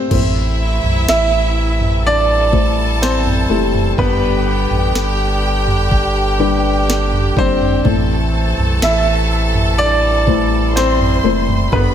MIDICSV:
0, 0, Header, 1, 7, 480
1, 0, Start_track
1, 0, Key_signature, 0, "minor"
1, 0, Tempo, 967742
1, 54, Time_signature, 4, 2, 24, 8
1, 5925, End_track
2, 0, Start_track
2, 0, Title_t, "Violin section"
2, 0, Program_c, 0, 48
2, 56, Note_on_c, 0, 64, 82
2, 59, Note_on_c, 0, 76, 89
2, 996, Note_off_c, 0, 64, 0
2, 997, Note_off_c, 0, 76, 0
2, 1008, Note_on_c, 0, 69, 75
2, 1013, Note_on_c, 0, 81, 91
2, 1952, Note_off_c, 0, 69, 0
2, 1954, Note_off_c, 0, 81, 0
2, 1978, Note_on_c, 0, 79, 92
2, 1979, Note_on_c, 0, 67, 85
2, 3876, Note_off_c, 0, 79, 0
2, 3877, Note_off_c, 0, 67, 0
2, 3899, Note_on_c, 0, 81, 87
2, 3900, Note_on_c, 0, 69, 79
2, 5317, Note_off_c, 0, 69, 0
2, 5317, Note_off_c, 0, 81, 0
2, 5329, Note_on_c, 0, 72, 69
2, 5329, Note_on_c, 0, 84, 81
2, 5802, Note_off_c, 0, 72, 0
2, 5802, Note_off_c, 0, 84, 0
2, 5814, Note_on_c, 0, 83, 99
2, 5816, Note_on_c, 0, 71, 88
2, 5925, Note_off_c, 0, 71, 0
2, 5925, Note_off_c, 0, 83, 0
2, 5925, End_track
3, 0, Start_track
3, 0, Title_t, "Grand piano"
3, 0, Program_c, 1, 0
3, 0, Note_on_c, 1, 60, 58
3, 0, Note_on_c, 1, 72, 71
3, 521, Note_off_c, 1, 60, 0
3, 521, Note_off_c, 1, 72, 0
3, 541, Note_on_c, 1, 76, 93
3, 543, Note_on_c, 1, 64, 69
3, 999, Note_off_c, 1, 64, 0
3, 1024, Note_on_c, 1, 74, 105
3, 1027, Note_on_c, 1, 62, 81
3, 1032, Note_off_c, 1, 76, 0
3, 1481, Note_off_c, 1, 62, 0
3, 1499, Note_on_c, 1, 72, 89
3, 1506, Note_on_c, 1, 60, 67
3, 1513, Note_off_c, 1, 74, 0
3, 1960, Note_off_c, 1, 60, 0
3, 1978, Note_on_c, 1, 71, 87
3, 1981, Note_on_c, 1, 59, 70
3, 1991, Note_off_c, 1, 72, 0
3, 3636, Note_off_c, 1, 71, 0
3, 3638, Note_off_c, 1, 59, 0
3, 3663, Note_on_c, 1, 72, 104
3, 3669, Note_on_c, 1, 60, 70
3, 4359, Note_off_c, 1, 72, 0
3, 4362, Note_off_c, 1, 60, 0
3, 4381, Note_on_c, 1, 76, 93
3, 4389, Note_on_c, 1, 64, 69
3, 4842, Note_off_c, 1, 64, 0
3, 4853, Note_on_c, 1, 74, 109
3, 4864, Note_on_c, 1, 62, 76
3, 4872, Note_off_c, 1, 76, 0
3, 5319, Note_off_c, 1, 62, 0
3, 5336, Note_on_c, 1, 72, 81
3, 5346, Note_on_c, 1, 60, 71
3, 5348, Note_off_c, 1, 74, 0
3, 5800, Note_off_c, 1, 60, 0
3, 5817, Note_on_c, 1, 71, 83
3, 5829, Note_on_c, 1, 59, 64
3, 5830, Note_off_c, 1, 72, 0
3, 5925, Note_off_c, 1, 59, 0
3, 5925, Note_off_c, 1, 71, 0
3, 5925, End_track
4, 0, Start_track
4, 0, Title_t, "Felt piano"
4, 0, Program_c, 2, 0
4, 0, Control_c, 2, 64, 127
4, 0, Note_on_c, 2, 31, 49
4, 0, Note_on_c, 2, 43, 47
4, 0, Note_on_c, 2, 57, 73
4, 0, Note_on_c, 2, 67, 64
4, 0, Note_on_c, 2, 69, 86
4, 0, Note_on_c, 2, 71, 67
4, 52, Note_off_c, 2, 57, 0
4, 52, Note_on_c, 2, 57, 69
4, 56, Note_on_c, 2, 64, 59
4, 57, Note_on_c, 2, 45, 58
4, 59, Note_on_c, 2, 72, 76
4, 61, Control_c, 2, 64, 0
4, 63, Note_off_c, 2, 67, 0
4, 64, Note_off_c, 2, 69, 0
4, 64, Note_off_c, 2, 71, 0
4, 65, Note_off_c, 2, 31, 0
4, 65, Note_off_c, 2, 43, 0
4, 156, Control_c, 2, 64, 127
4, 756, Note_off_c, 2, 45, 0
4, 965, Note_off_c, 2, 57, 0
4, 967, Note_off_c, 2, 64, 0
4, 969, Note_off_c, 2, 72, 0
4, 1249, Note_on_c, 2, 57, 67
4, 1252, Note_on_c, 2, 64, 56
4, 1255, Note_on_c, 2, 72, 68
4, 1707, Note_off_c, 2, 57, 0
4, 1709, Note_off_c, 2, 64, 0
4, 1710, Note_off_c, 2, 72, 0
4, 1732, Note_on_c, 2, 57, 75
4, 1737, Note_on_c, 2, 64, 67
4, 1739, Note_on_c, 2, 67, 82
4, 1961, Note_off_c, 2, 57, 0
4, 1964, Note_off_c, 2, 64, 0
4, 1964, Note_off_c, 2, 67, 0
4, 1975, Note_on_c, 2, 55, 66
4, 1977, Note_on_c, 2, 43, 59
4, 1977, Note_on_c, 2, 62, 63
4, 1980, Control_c, 2, 64, 0
4, 1981, Note_on_c, 2, 71, 79
4, 2078, Control_c, 2, 64, 127
4, 2676, Note_off_c, 2, 43, 0
4, 2886, Note_off_c, 2, 55, 0
4, 2887, Note_off_c, 2, 62, 0
4, 2889, Note_off_c, 2, 71, 0
4, 3169, Note_on_c, 2, 55, 76
4, 3172, Note_on_c, 2, 62, 72
4, 3175, Note_on_c, 2, 71, 76
4, 3627, Note_off_c, 2, 55, 0
4, 3629, Note_off_c, 2, 62, 0
4, 3630, Note_off_c, 2, 71, 0
4, 3652, Note_on_c, 2, 55, 78
4, 3658, Note_on_c, 2, 62, 68
4, 3661, Note_on_c, 2, 74, 80
4, 3881, Note_off_c, 2, 55, 0
4, 3884, Note_off_c, 2, 62, 0
4, 3886, Note_off_c, 2, 74, 0
4, 3890, Note_on_c, 2, 57, 66
4, 3894, Note_on_c, 2, 45, 55
4, 3895, Note_on_c, 2, 64, 64
4, 3897, Note_on_c, 2, 72, 75
4, 3901, Control_c, 2, 64, 0
4, 4001, Control_c, 2, 64, 127
4, 4594, Note_off_c, 2, 45, 0
4, 4804, Note_off_c, 2, 57, 0
4, 4806, Note_off_c, 2, 64, 0
4, 4807, Note_off_c, 2, 72, 0
4, 5092, Note_on_c, 2, 57, 66
4, 5095, Note_on_c, 2, 64, 55
4, 5098, Note_on_c, 2, 72, 72
4, 5549, Note_off_c, 2, 57, 0
4, 5551, Note_off_c, 2, 64, 0
4, 5552, Note_off_c, 2, 72, 0
4, 5572, Note_on_c, 2, 57, 79
4, 5576, Note_on_c, 2, 64, 68
4, 5579, Note_on_c, 2, 72, 91
4, 5801, Note_off_c, 2, 57, 0
4, 5803, Note_off_c, 2, 64, 0
4, 5805, Note_off_c, 2, 72, 0
4, 5810, Note_on_c, 2, 55, 68
4, 5811, Note_on_c, 2, 62, 65
4, 5812, Note_on_c, 2, 43, 64
4, 5815, Note_on_c, 2, 69, 62
4, 5821, Control_c, 2, 64, 0
4, 5847, Note_off_c, 2, 69, 0
4, 5848, Note_on_c, 2, 71, 73
4, 5921, Control_c, 2, 64, 127
4, 5925, Note_off_c, 2, 43, 0
4, 5925, Note_off_c, 2, 55, 0
4, 5925, Note_off_c, 2, 62, 0
4, 5925, Note_off_c, 2, 71, 0
4, 5925, End_track
5, 0, Start_track
5, 0, Title_t, "Woodwind section"
5, 0, Program_c, 3, 71
5, 44, Note_on_c, 3, 57, 59
5, 45, Note_on_c, 3, 52, 60
5, 46, Note_on_c, 3, 64, 72
5, 47, Note_on_c, 3, 48, 64
5, 1000, Note_off_c, 3, 57, 0
5, 1015, Note_on_c, 3, 55, 62
5, 1950, Note_off_c, 3, 52, 0
5, 1951, Note_off_c, 3, 48, 0
5, 1951, Note_off_c, 3, 64, 0
5, 1965, Note_off_c, 3, 55, 0
5, 1974, Note_on_c, 3, 62, 61
5, 1977, Note_on_c, 3, 67, 77
5, 1978, Note_on_c, 3, 50, 72
5, 1978, Note_on_c, 3, 55, 60
5, 3809, Note_off_c, 3, 50, 0
5, 3809, Note_off_c, 3, 55, 0
5, 3809, Note_off_c, 3, 62, 0
5, 3809, Note_off_c, 3, 67, 0
5, 3894, Note_on_c, 3, 64, 76
5, 3895, Note_on_c, 3, 48, 70
5, 3896, Note_on_c, 3, 52, 62
5, 3898, Note_on_c, 3, 57, 66
5, 4846, Note_off_c, 3, 57, 0
5, 4855, Note_on_c, 3, 55, 72
5, 5795, Note_off_c, 3, 48, 0
5, 5795, Note_off_c, 3, 64, 0
5, 5796, Note_off_c, 3, 52, 0
5, 5819, Note_on_c, 3, 50, 62
5, 5819, Note_on_c, 3, 59, 60
5, 5821, Note_on_c, 3, 67, 78
5, 5925, Note_off_c, 3, 50, 0
5, 5925, Note_off_c, 3, 55, 0
5, 5925, Note_off_c, 3, 59, 0
5, 5925, Note_off_c, 3, 67, 0
5, 5925, End_track
6, 0, Start_track
6, 0, Title_t, "Sub bass"
6, 0, Program_c, 4, 38
6, 56, Note_on_c, 4, 33, 105
6, 395, Note_off_c, 4, 33, 0
6, 414, Note_on_c, 4, 35, 85
6, 526, Note_off_c, 4, 35, 0
6, 539, Note_on_c, 4, 33, 97
6, 1717, Note_off_c, 4, 33, 0
6, 1734, Note_on_c, 4, 29, 96
6, 1957, Note_off_c, 4, 29, 0
6, 1974, Note_on_c, 4, 31, 109
6, 2314, Note_off_c, 4, 31, 0
6, 2333, Note_on_c, 4, 33, 88
6, 2445, Note_off_c, 4, 33, 0
6, 2451, Note_on_c, 4, 31, 98
6, 3633, Note_off_c, 4, 31, 0
6, 3653, Note_on_c, 4, 31, 94
6, 3877, Note_off_c, 4, 31, 0
6, 3893, Note_on_c, 4, 33, 106
6, 4234, Note_off_c, 4, 33, 0
6, 4253, Note_on_c, 4, 35, 83
6, 4365, Note_off_c, 4, 35, 0
6, 4373, Note_on_c, 4, 33, 93
6, 5554, Note_off_c, 4, 33, 0
6, 5573, Note_on_c, 4, 29, 102
6, 5797, Note_off_c, 4, 29, 0
6, 5813, Note_on_c, 4, 31, 102
6, 5925, Note_off_c, 4, 31, 0
6, 5925, End_track
7, 0, Start_track
7, 0, Title_t, "Drums"
7, 55, Note_on_c, 9, 36, 89
7, 55, Note_on_c, 9, 43, 98
7, 55, Note_on_c, 9, 49, 83
7, 104, Note_off_c, 9, 36, 0
7, 105, Note_off_c, 9, 43, 0
7, 105, Note_off_c, 9, 49, 0
7, 415, Note_on_c, 9, 43, 56
7, 464, Note_off_c, 9, 43, 0
7, 538, Note_on_c, 9, 38, 109
7, 588, Note_off_c, 9, 38, 0
7, 896, Note_on_c, 9, 43, 58
7, 945, Note_off_c, 9, 43, 0
7, 1255, Note_on_c, 9, 36, 90
7, 1305, Note_off_c, 9, 36, 0
7, 1502, Note_on_c, 9, 38, 111
7, 1552, Note_off_c, 9, 38, 0
7, 1617, Note_on_c, 9, 43, 62
7, 1667, Note_off_c, 9, 43, 0
7, 1856, Note_on_c, 9, 43, 67
7, 1906, Note_off_c, 9, 43, 0
7, 1974, Note_on_c, 9, 43, 91
7, 1975, Note_on_c, 9, 36, 96
7, 2024, Note_off_c, 9, 43, 0
7, 2025, Note_off_c, 9, 36, 0
7, 2334, Note_on_c, 9, 43, 57
7, 2384, Note_off_c, 9, 43, 0
7, 2457, Note_on_c, 9, 38, 94
7, 2507, Note_off_c, 9, 38, 0
7, 2814, Note_on_c, 9, 43, 63
7, 2864, Note_off_c, 9, 43, 0
7, 2934, Note_on_c, 9, 36, 92
7, 2983, Note_off_c, 9, 36, 0
7, 3421, Note_on_c, 9, 38, 109
7, 3470, Note_off_c, 9, 38, 0
7, 3535, Note_on_c, 9, 43, 64
7, 3584, Note_off_c, 9, 43, 0
7, 3654, Note_on_c, 9, 36, 99
7, 3704, Note_off_c, 9, 36, 0
7, 3776, Note_on_c, 9, 43, 72
7, 3826, Note_off_c, 9, 43, 0
7, 3893, Note_on_c, 9, 43, 98
7, 3894, Note_on_c, 9, 36, 96
7, 3942, Note_off_c, 9, 43, 0
7, 3944, Note_off_c, 9, 36, 0
7, 4254, Note_on_c, 9, 43, 55
7, 4303, Note_off_c, 9, 43, 0
7, 4377, Note_on_c, 9, 38, 100
7, 4426, Note_off_c, 9, 38, 0
7, 4731, Note_on_c, 9, 43, 66
7, 4781, Note_off_c, 9, 43, 0
7, 5095, Note_on_c, 9, 36, 84
7, 5144, Note_off_c, 9, 36, 0
7, 5342, Note_on_c, 9, 38, 102
7, 5391, Note_off_c, 9, 38, 0
7, 5456, Note_on_c, 9, 43, 66
7, 5506, Note_off_c, 9, 43, 0
7, 5696, Note_on_c, 9, 43, 71
7, 5746, Note_off_c, 9, 43, 0
7, 5815, Note_on_c, 9, 36, 83
7, 5817, Note_on_c, 9, 43, 102
7, 5865, Note_off_c, 9, 36, 0
7, 5867, Note_off_c, 9, 43, 0
7, 5925, End_track
0, 0, End_of_file